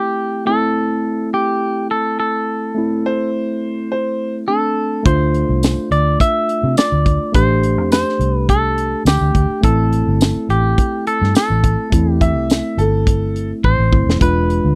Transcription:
Already playing: A3 C4 E4 G4
0.45 A3 C4 E4 A4
1.34 G4
1.91 A4
2.20 A4
2.75 A3 C4 E4
3.06 C5
3.92 C5
4.47 A3 C4 D4 A4
5.03 D2 A3 D4 F4 C5, kick, closed hi-hat
5.34 closed hi-hat
5.49 C2
5.63 snare, closed hi-hat, tambourine
5.91 D2 D5, closed hi-hat
6.20 E5, kick, closed hi-hat
6.49 closed hi-hat
6.63 C3
6.77 D5, snare, closed hi-hat, tambourine
6.92 D2
7.06 kick, closed hi-hat
7.32 A1 A3 D4 G4 C5, kick, closed hi-hat
7.63 closed hi-hat
7.78 F2
7.92 C5, snare, closed hi-hat, tambourine
8.09 snare
8.19 C2, closed hi-hat
8.34 B4
8.49 A4, kick, closed hi-hat
8.78 closed hi-hat
9.05 D2 G4, snare, closed hi-hat, tambourine
9.21 D2
9.35 D2, kick, closed hi-hat
9.61 A1 A3 C4 E4 A4, kick, closed hi-hat
9.92 closed hi-hat
10.07 G1
10.21 snare, closed hi-hat, tambourine
10.36 muted fingered electric bass stroke
10.49 A1 G4, closed hi-hat
10.78 kick, closed hi-hat
11.07 A4, closed hi-hat
11.22 G2, snare
11.35 A4, snare, closed hi-hat, tambourine
11.50 A1
11.64 kick, closed hi-hat
11.90 E2 A3 C4 E4, kick, closed hi-hat
12.13 G4
12.21 E5, kick, closed hi-hat
12.36 C2
12.50 snare, closed hi-hat, tambourine
12.77 G1 A4, closed hi-hat
13.07 kick, closed hi-hat
13.36 closed hi-hat
13.64 A1 C5, kick
13.78 A1
13.91 G1 A3 C4 E4, kick
14.07 E1, snare
14.19 E1 G#3 D4 F4 B4, kick, closed hi-hat
14.50 closed hi-hat
14.65 D2

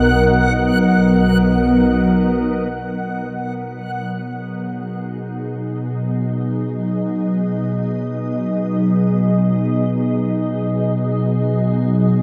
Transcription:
Already playing: B1 F#3 B3 D#4 A#4 D#5 F#5
2.71 B2
3.12 B3
3.87 D#4
4.22 G#4
5.10 D#5

